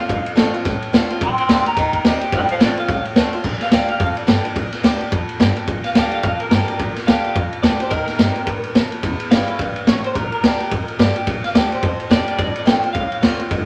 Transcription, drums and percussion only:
0.09 kick, ride
0.26 ride
0.37 snare, ride
0.54 ride
0.65 kick, snare, ride
0.82 ride
0.94 snare, ride
1.10 ride
1.21 kick, ride
1.38 ride
1.49 snare, ride
1.66 ride
1.77 kick, ride
1.93 kick, ride
2.05 snare, ride
2.21 ride
2.32 kick, ride
2.49 ride
2.61 snare, ride
2.77 ride
2.88 kick, ride
3.05 ride
3.16 snare, ride
3.33 ride
3.44 kick, crash
3.61 snare, ride
3.71 snare, ride
3.88 ride
4.00 kick, ride
4.17 ride
4.28 kick, snare, ride
4.45 ride
4.56 kick, ride
4.72 snare, ride
4.84 snare, ride
5.01 ride
5.12 kick, ride
5.29 ride
5.40 kick, snare, ride
5.56 ride
5.67 kick, ride
5.84 snare, ride
5.95 snare, ride
6.11 ride
6.23 kick, ride
6.40 ride
6.51 kick, snare, ride
6.68 ride
6.79 kick, ride
6.96 snare, ride
7.08 snare, ride
7.24 ride
7.35 kick, ride
7.53 ride
7.63 kick, snare, ride
7.80 ride
7.91 kick, ride
8.08 snare, ride
8.19 snare, ride
8.36 ride
8.47 kick, ride
8.63 ride
8.75 kick, snare, ride
8.92 ride
9.03 kick, ride
9.20 ride
9.31 snare, ride
9.48 ride
9.59 kick, ride
9.76 ride
9.87 kick, snare, ride
10.04 ride
10.15 kick, ride
10.32 ride
10.43 snare, ride
10.60 ride
10.71 kick, ride
10.88 ride
10.99 kick, snare, ride
11.16 ride
11.27 kick, ride
11.44 snare, ride
11.55 snare, ride
11.72 ride
11.83 kick, ride
12.00 ride
12.11 kick, snare, ride
12.28 ride
12.39 kick, ride
12.55 ride
12.67 snare, ride
12.83 ride
12.95 kick, ride
13.12 ride
13.23 kick, snare, ride
13.39 ride
13.51 kick, ride

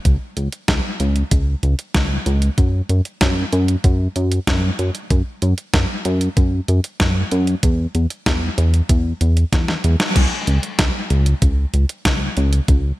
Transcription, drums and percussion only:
0.05 kick, closed hi-hat
0.37 closed hi-hat
0.52 closed hi-hat
0.68 kick, snare, closed hi-hat
1.00 closed hi-hat
1.16 closed hi-hat
1.31 kick, closed hi-hat
1.63 closed hi-hat
1.79 closed hi-hat
1.94 kick, snare, closed hi-hat
2.26 closed hi-hat
2.42 closed hi-hat
2.58 kick, closed hi-hat
2.89 closed hi-hat
3.05 closed hi-hat
3.21 kick, snare, closed hi-hat
3.53 closed hi-hat
3.68 closed hi-hat
3.84 kick, closed hi-hat
4.16 closed hi-hat
4.32 closed hi-hat
4.47 kick, snare, closed hi-hat
4.79 closed hi-hat
4.95 closed hi-hat
5.10 kick, closed hi-hat
5.42 closed hi-hat
5.58 closed hi-hat
5.74 kick, snare, closed hi-hat
6.05 closed hi-hat
6.21 closed hi-hat
6.37 kick, closed hi-hat
6.68 closed hi-hat
6.84 closed hi-hat
7.00 kick, snare, closed hi-hat
7.31 closed hi-hat
7.47 closed hi-hat
7.63 kick, closed hi-hat
7.95 closed hi-hat
8.10 closed hi-hat
8.26 kick, snare, closed hi-hat
8.58 closed hi-hat
8.74 closed hi-hat
8.89 kick, closed hi-hat
9.21 closed hi-hat
9.37 closed hi-hat
9.53 kick, snare, closed hi-hat
9.68 snare
9.84 closed hi-hat
10.00 snare, closed hi-hat
10.16 kick, closed hi-hat, crash
10.47 closed hi-hat
10.63 closed hi-hat
10.79 kick, snare, closed hi-hat
11.10 closed hi-hat
11.26 closed hi-hat
11.42 kick, closed hi-hat
11.74 closed hi-hat
11.89 closed hi-hat
12.05 kick, snare, closed hi-hat
12.37 closed hi-hat
12.53 closed hi-hat
12.68 kick, closed hi-hat

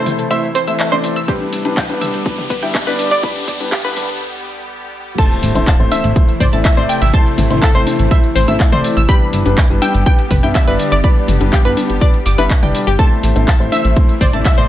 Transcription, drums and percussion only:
0.06 open hi-hat, mid tom, shaker
0.19 closed hi-hat, shaker
0.31 closed hi-hat, shaker
0.43 shaker
0.55 open hi-hat, shaker
0.67 closed hi-hat, shaker
0.79 clap, closed hi-hat, shaker
0.92 high conga, shaker
1.04 open hi-hat, shaker
1.16 closed hi-hat, shaker
1.28 kick, closed hi-hat, shaker
1.41 high conga, shaker
1.53 open hi-hat, shaker
1.65 closed hi-hat, high conga, shaker
1.77 kick, clap, closed hi-hat, shaker
1.89 closed hi-hat, high conga, shaker
2.01 open hi-hat, mid tom, shaker
2.14 closed hi-hat, shaker
2.26 kick, closed hi-hat, shaker
2.38 mid tom, shaker
2.50 kick, open hi-hat, shaker
2.63 closed hi-hat, shaker
2.75 kick, clap, closed hi-hat, shaker
2.87 high conga, shaker
2.99 open hi-hat, shaker
3.11 closed hi-hat, shaker
3.23 kick, closed hi-hat, shaker
3.36 closed hi-hat, high conga, shaker
3.48 kick, open hi-hat, shaker
3.60 closed hi-hat, high conga, shaker
3.72 kick, clap, closed hi-hat, shaker
3.85 closed hi-hat, high conga, shaker
3.96 open hi-hat, mid tom, shaker
4.09 closed hi-hat, shaker
5.18 kick, closed hi-hat, crash, shaker
5.31 shaker
5.43 open hi-hat, shaker
5.55 closed hi-hat, high conga, shaker
5.67 kick, clap, closed hi-hat, shaker
5.80 shaker
5.92 open hi-hat, high conga, shaker
6.04 closed hi-hat, shaker
6.16 kick, closed hi-hat, shaker
6.29 closed hi-hat, shaker
6.40 kick, open hi-hat, mid tom, shaker
6.53 closed hi-hat, high conga, shaker
6.65 kick, clap, closed hi-hat, shaker
6.77 closed hi-hat, shaker
6.89 open hi-hat, shaker
7.02 closed hi-hat, shaker
7.14 kick, closed hi-hat, shaker
7.26 shaker
7.38 open hi-hat, mid tom, shaker
7.50 closed hi-hat, high conga, shaker
7.62 kick, clap, closed hi-hat, shaker
7.75 shaker
7.87 open hi-hat, high conga, shaker
7.99 closed hi-hat, shaker
8.11 kick, closed hi-hat, shaker
8.24 closed hi-hat, shaker
8.36 open hi-hat, shaker
8.48 closed hi-hat, high conga, shaker
8.60 kick, clap, closed hi-hat, shaker
8.72 closed hi-hat, mid tom, shaker
8.84 open hi-hat, shaker
8.97 closed hi-hat, shaker
9.09 kick, closed hi-hat, shaker
9.21 shaker
9.33 open hi-hat, shaker
9.46 closed hi-hat, high conga, shaker
9.57 kick, clap, closed hi-hat, shaker
9.70 shaker
9.82 open hi-hat, high conga, shaker
9.94 closed hi-hat, shaker
10.06 kick, closed hi-hat, shaker
10.19 closed hi-hat, shaker
10.31 kick, open hi-hat, mid tom, shaker
10.43 closed hi-hat, high conga, shaker
10.55 kick, clap, closed hi-hat, shaker
10.68 closed hi-hat, shaker
10.79 open hi-hat, shaker
10.92 closed hi-hat, shaker
11.04 kick, closed hi-hat, shaker
11.17 shaker
11.28 open hi-hat, mid tom, shaker
11.41 closed hi-hat, high conga, shaker
11.53 kick, clap, closed hi-hat, shaker
11.65 shaker
11.77 open hi-hat, high conga, shaker
11.90 closed hi-hat, shaker
12.01 kick, closed hi-hat, shaker
12.14 closed hi-hat, shaker
12.26 open hi-hat, shaker
12.38 closed hi-hat, high conga, shaker
12.50 kick, clap, closed hi-hat, shaker
12.63 closed hi-hat, mid tom, shaker
12.75 open hi-hat, shaker
12.87 closed hi-hat, shaker
12.99 kick, closed hi-hat, shaker
13.12 shaker
13.23 open hi-hat, shaker
13.36 closed hi-hat, high conga, shaker
13.48 kick, clap, closed hi-hat, shaker
13.60 shaker
13.72 open hi-hat, high conga, shaker
13.85 closed hi-hat, shaker
13.96 kick, closed hi-hat, shaker
14.09 closed hi-hat, shaker
14.21 kick, open hi-hat, mid tom, shaker
14.33 closed hi-hat, high conga, shaker
14.45 kick, clap, closed hi-hat, shaker
14.58 closed hi-hat, shaker

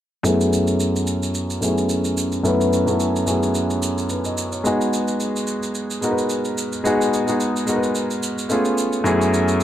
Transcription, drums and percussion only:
0.25 shaker
0.41 shaker
0.53 shaker
0.67 shaker
0.80 shaker
0.96 shaker
1.07 shaker
1.23 shaker
1.34 shaker
1.50 shaker
1.62 shaker
1.78 shaker
1.89 shaker
2.04 shaker
2.17 shaker
2.32 shaker
2.45 shaker
2.61 shaker
2.73 shaker
2.87 shaker
3.00 shaker
3.16 shaker
3.27 shaker
3.43 shaker
3.55 shaker
3.70 shaker
3.83 shaker
3.98 shaker
4.09 shaker
4.25 shaker
4.38 shaker
4.52 shaker
4.65 shaker
4.81 shaker
4.93 shaker
5.08 shaker
5.20 shaker
5.36 shaker
5.47 shaker
5.63 shaker
5.75 shaker
5.90 shaker
6.03 shaker
6.18 shaker
6.30 shaker
6.45 shaker
6.58 shaker
6.72 shaker
6.85 shaker
7.01 shaker
7.14 shaker
7.28 shaker
7.40 shaker
7.56 shaker
7.67 shaker
7.83 shaker
7.95 shaker
8.11 shaker
8.23 shaker
8.38 shaker
8.50 shaker
8.65 shaker
8.78 shaker
8.93 shaker
9.06 shaker
9.22 shaker
9.34 shaker
9.48 shaker

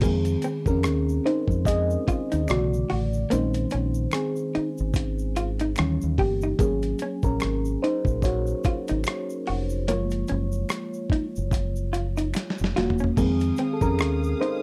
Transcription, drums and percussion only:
0.01 kick, closed hi-hat, crash, shaker
0.25 closed hi-hat, shaker
0.42 closed hi-hat, shaker
0.66 kick, shaker
0.83 finger snap, cross-stick, closed hi-hat, shaker
1.09 shaker
1.27 closed hi-hat
1.48 kick, shaker
1.65 kick, closed hi-hat, shaker
1.90 shaker
2.08 kick, closed hi-hat, shaker
2.32 closed hi-hat, shaker
2.48 finger snap, cross-stick, closed hi-hat, shaker
2.74 shaker
2.90 open hi-hat
3.13 shaker
3.31 closed hi-hat, shaker
3.54 closed hi-hat, shaker
3.70 closed hi-hat, shaker
3.94 shaker
4.11 finger snap, cross-stick, closed hi-hat, shaker
4.36 shaker
4.55 closed hi-hat
4.78 shaker
4.94 kick, closed hi-hat, shaker
5.19 shaker
5.36 closed hi-hat, shaker
5.59 closed hi-hat, shaker
5.76 finger snap, cross-stick, closed hi-hat, shaker
6.01 shaker
6.18 kick, open hi-hat
6.41 shaker
6.59 kick, closed hi-hat, shaker
6.82 closed hi-hat, shaker
6.99 closed hi-hat, shaker
7.23 kick, shaker
7.40 finger snap, cross-stick, closed hi-hat, shaker
7.65 shaker
7.84 closed hi-hat
8.05 kick, shaker
8.22 kick, closed hi-hat, shaker
8.47 shaker
8.64 kick, closed hi-hat, shaker
8.88 closed hi-hat, shaker
9.04 finger snap, cross-stick, closed hi-hat, shaker
9.30 shaker
9.47 open hi-hat
9.70 shaker
9.88 closed hi-hat, shaker
10.10 closed hi-hat, shaker
10.27 closed hi-hat, shaker
10.52 shaker
10.69 finger snap, cross-stick, closed hi-hat, shaker
10.94 shaker
11.10 kick, closed hi-hat
11.36 shaker
11.51 kick, closed hi-hat, shaker
11.76 shaker
11.93 closed hi-hat, shaker
12.17 closed hi-hat, shaker
12.34 finger snap, snare, closed hi-hat, shaker
12.50 snare
12.58 shaker
12.64 snare
12.77 snare, closed hi-hat
12.90 floor tom
12.98 shaker
13.04 floor tom
13.17 kick, crash, shaker
13.40 closed hi-hat, shaker
13.57 closed hi-hat, shaker
13.81 kick, shaker
13.99 finger snap, cross-stick, closed hi-hat, shaker
14.24 shaker
14.43 closed hi-hat

